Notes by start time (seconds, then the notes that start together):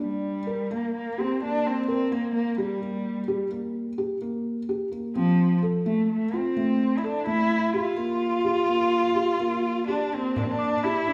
0.00 G3 D4
0.47 A#4
0.71 A#3
0.95 A#3
1.18 C4 G4
1.42 A#3 D4
1.66 C4
1.88 C4 A#4
2.06 C4
2.12 A#3
2.35 A#3
2.58 G3 G4
2.82 A#3
3.28 G4
3.51 A#3
3.98 G4
4.22 A#3
4.69 G4
4.92 A#3
5.15 F3 C4
5.62 A4
5.86 A3
6.10 A3
6.33 C4 F4
6.57 A3
6.98 E4
7.04 D4 A4
7.26 A3 E4
7.74 F4 G4
7.97 A#3
8.44 G4
8.69 A#3
9.15 G4
9.40 A#3
9.88 D4 G4
10.13 A#3 C4
10.36 A#3 D4, frame drum
10.44 C4
10.51 D4
10.59 D6
10.83 E4 G4
11.07 D4